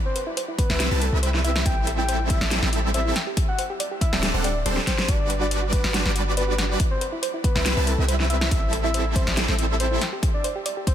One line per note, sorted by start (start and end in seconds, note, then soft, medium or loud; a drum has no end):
0.05 0.18 C5 medium
0.15 0.19 B4 medium
0.15 closed hi-hat medium
0.27 0.35 E4 loud
0.37 0.46 C5 loud
0.37 closed hi-hat medium
0.48 0.56 E4 medium
0.58 1.03 B4 medium
0.58 kick loud
0.58 closed hi-hat medium
0.70 0.89 C2 medium
0.70 0.89 G3 medium
0.70 0.89 C4 medium
0.70 0.89 E4 medium
0.70 0.89 B4 medium
0.70 0.75 E5 medium
0.70 0.89 E5 loud
0.70 snare medium
0.80 0.86 E4 loud
0.80 snare loud
0.80 closed hi-hat medium
0.91 1.10 C2 loud
0.91 1.06 G3 medium
0.91 1.06 C4 medium
0.91 1.05 E4 medium
0.91 0.96 B4 medium
0.91 1.06 B4 medium
0.91 1.06 A5 loud
1.01 1.05 E4 medium
1.01 1.15 A4 medium
1.01 closed hi-hat medium
1.13 1.64 C2 loud
1.13 1.63 G3 medium
1.13 1.63 C4 medium
1.13 1.63 E4 medium
1.13 1.63 B4 medium
1.13 1.63 E5 medium
1.23 1.31 C5 loud
1.23 closed hi-hat medium
1.34 1.37 E4 loud
1.34 snare soft
1.44 1.58 E5 medium
1.44 1.50 E5 loud
1.44 closed hi-hat medium
1.55 1.61 E4 loud
1.55 snare medium
1.66 2.39 A1 medium
1.66 2.39 G3 medium
1.66 2.38 C4 medium
1.66 1.71 E4 loud
1.66 2.39 E4 medium
1.66 2.38 A4 medium
1.66 2.38 E5 loud
1.66 1.85 G5 loud
1.66 kick loud
1.66 closed hi-hat medium
1.87 1.90 A4 medium
1.87 closed hi-hat medium
1.98 2.06 E4 loud
1.98 2.18 G5 loud
2.09 2.17 C5 loud
2.09 closed hi-hat medium
2.20 2.28 E4 medium
2.30 2.50 E5 medium
2.30 kick loud
2.30 closed hi-hat medium
2.41 2.60 A1 loud
2.41 2.60 G3 medium
2.41 2.60 C4 medium
2.41 2.60 E4 medium
2.41 2.60 A4 medium
2.41 2.60 D5 loud
2.41 2.46 E5 medium
2.41 snare medium
2.51 2.57 E4 loud
2.51 snare loud
2.51 closed hi-hat medium
2.62 3.12 A1 medium
2.62 3.14 G3 loud
2.62 3.14 C4 medium
2.62 3.14 E4 medium
2.62 3.14 A4 medium
2.62 2.68 A4 medium
2.62 3.14 E5 loud
2.62 snare medium
2.73 2.76 E4 medium
2.73 closed hi-hat medium
2.94 3.03 C5 loud
2.94 3.14 E5 medium
2.94 closed hi-hat medium
3.05 3.09 E4 loud
3.16 3.21 G5 loud
3.16 snare medium
3.16 closed hi-hat medium
3.27 3.32 G4 loud
3.37 3.43 G4 loud
3.37 kick loud
3.37 closed hi-hat medium
3.48 3.61 F#5 medium
3.59 3.62 C5 medium
3.59 closed hi-hat medium
3.70 3.78 G4 loud
3.80 3.89 D5 loud
3.80 closed hi-hat medium
3.91 3.99 G4 medium
4.01 4.28 E5 loud
4.01 kick loud
4.01 closed hi-hat medium
4.12 4.32 D1 loud
4.12 4.31 G3 medium
4.12 4.31 C4 medium
4.12 4.31 D4 medium
4.12 4.31 A4 medium
4.12 4.31 D5 loud
4.12 4.18 G5 medium
4.12 snare medium
4.23 4.29 G4 loud
4.23 snare loud
4.23 closed hi-hat medium
4.34 4.64 D1 loud
4.34 4.48 G3 medium
4.34 4.48 C4 medium
4.34 4.48 D4 medium
4.34 4.48 A4 medium
4.34 4.39 C5 medium
4.34 4.48 F#5 loud
4.44 4.48 G4 medium
4.44 4.58 D5 medium
4.44 closed hi-hat medium
4.65 4.79 D1 loud
4.65 4.81 G3 medium
4.65 4.81 C4 medium
4.65 4.81 D4 medium
4.65 4.81 A4 medium
4.65 4.81 C5 medium
4.65 4.74 D5 loud
4.65 closed hi-hat medium
4.77 4.80 G4 loud
4.77 snare medium
4.87 5.10 C5 medium
4.87 4.93 G5 medium
4.87 kick medium
4.87 snare medium
4.87 closed hi-hat medium
4.98 5.04 G4 loud
4.98 snare medium
5.08 5.82 G1 medium
5.08 5.81 G3 medium
5.08 5.81 D4 medium
5.08 5.81 F#4 medium
5.08 5.14 F#4 loud
5.08 5.81 B4 medium
5.08 5.81 D5 loud
5.08 5.28 D5 loud
5.08 kick loud
5.08 closed hi-hat medium
5.30 5.33 B4 medium
5.30 closed hi-hat medium
5.41 5.49 F#4 loud
5.41 5.61 D5 medium
5.51 5.60 D5 loud
5.51 closed hi-hat medium
5.62 5.70 F#4 medium
5.73 5.92 B4 medium
5.73 kick loud
5.73 closed hi-hat medium
5.84 6.03 G1 loud
5.84 6.03 G3 medium
5.84 6.03 D4 medium
5.84 6.03 F#4 medium
5.84 6.03 B4 medium
5.84 6.03 D5 loud
5.84 5.89 F#5 medium
5.84 snare medium
5.94 6.00 F#4 loud
5.94 snare loud
5.94 closed hi-hat medium
6.05 6.77 G1 medium
6.05 6.79 G3 loud
6.05 6.79 D4 medium
6.05 6.79 F#4 medium
6.05 6.11 B4 medium
6.05 6.79 B4 medium
6.05 6.79 D5 loud
6.05 snare medium
6.15 6.19 F#4 medium
6.15 closed hi-hat medium
6.37 6.57 B4 medium
6.37 6.46 D5 loud
6.37 closed hi-hat medium
6.48 6.51 F#4 loud
6.58 6.64 F#5 loud
6.58 snare medium
6.58 closed hi-hat medium
6.69 6.75 F#4 loud
6.80 6.86 E4 loud
6.80 kick loud
6.80 closed hi-hat medium
6.91 7.04 C5 medium
7.01 7.05 B4 medium
7.01 closed hi-hat medium
7.12 7.20 E4 loud
7.22 7.31 C5 loud
7.22 closed hi-hat medium
7.34 7.42 E4 medium
7.44 7.89 B4 loud
7.44 kick loud
7.44 closed hi-hat medium
7.55 7.75 C2 loud
7.55 7.74 G3 medium
7.55 7.74 C4 medium
7.55 7.74 E4 medium
7.55 7.74 B4 medium
7.55 7.61 E5 medium
7.55 7.74 E5 loud
7.55 snare medium
7.65 7.71 E4 loud
7.65 snare loud
7.65 closed hi-hat medium
7.77 7.96 C2 loud
7.77 7.91 G3 medium
7.77 7.91 C4 medium
7.77 7.91 E4 medium
7.77 7.82 B4 medium
7.77 7.91 B4 medium
7.77 7.91 A5 loud
7.87 7.90 E4 medium
7.87 8.01 A4 medium
7.87 closed hi-hat medium
7.98 8.49 C2 loud
7.98 8.49 G3 medium
7.98 8.49 C4 medium
7.98 8.49 E4 medium
7.98 8.49 B4 medium
7.98 8.49 E5 medium
8.08 8.17 C5 loud
8.08 closed hi-hat medium
8.19 8.23 E4 loud
8.19 snare soft
8.30 8.36 E5 loud
8.30 8.43 E5 medium
8.30 closed hi-hat medium
8.41 8.46 E4 loud
8.41 snare medium
8.51 9.25 A1 medium
8.51 9.24 G3 medium
8.51 9.24 C4 medium
8.51 9.24 E4 medium
8.51 9.24 A4 medium
8.51 8.71 E5 loud
8.51 9.24 E5 loud
8.51 kick loud
8.51 closed hi-hat medium
8.73 8.76 A4 medium
8.73 closed hi-hat medium
8.84 8.92 E4 loud
8.84 9.03 E5 medium
8.94 9.03 C5 loud
8.94 closed hi-hat medium
9.06 9.13 E4 medium
9.16 9.35 C5 medium
9.16 kick loud
9.16 closed hi-hat medium
9.27 9.46 A1 loud
9.27 9.46 G3 medium
9.27 9.46 C4 medium
9.27 9.46 E4 medium
9.27 9.46 A4 medium
9.27 9.46 D5 medium
9.27 9.32 E5 medium
9.27 snare medium
9.37 9.43 E4 loud
9.37 snare loud
9.37 closed hi-hat medium
9.48 9.98 A1 loud
9.48 10.00 G3 loud
9.48 10.00 C4 medium
9.48 10.00 E4 medium
9.48 9.54 A4 medium
9.48 10.00 A4 medium
9.48 10.00 E5 loud
9.48 snare medium
9.58 9.62 E4 medium
9.58 closed hi-hat medium
9.80 9.89 C5 loud
9.80 10.00 C5 loud
9.80 closed hi-hat medium
9.91 9.94 E4 loud
10.01 10.07 G5 loud
10.01 snare medium
10.01 closed hi-hat medium
10.13 10.18 G4 loud
10.23 10.29 G4 loud
10.23 kick loud
10.23 closed hi-hat medium
10.34 10.47 D5 medium
10.44 10.48 C5 medium
10.44 closed hi-hat medium
10.55 10.63 G4 loud
10.66 10.74 D5 loud
10.66 closed hi-hat medium
10.77 10.85 G4 medium
10.87 10.95 C5 loud
10.87 kick loud
10.87 closed hi-hat medium